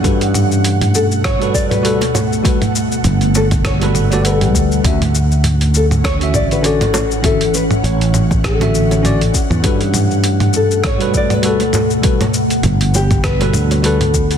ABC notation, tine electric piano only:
X:1
M:4/4
L:1/16
Q:"Swing 16ths" 1/4=100
K:Glyd
V:1 name="Tine electric piano"
[G,FAB] z8 [G,FAB]3 [G,FAB] z3 | [G,FAB] z8 [G,FAB]2 [G,FAd] [G,ABf]4 | [D,CFe] z8 [D,CFe]3 [D,CFd] z3 | [D,CFe] z8 [D,CFe]3 [D,CFd] z3 |
[G,FAB] z8 [G,FAB]3 [G,FAB] z3 | [G,FAB] z8 [G,FAB]3 [G,FAB] z3 |]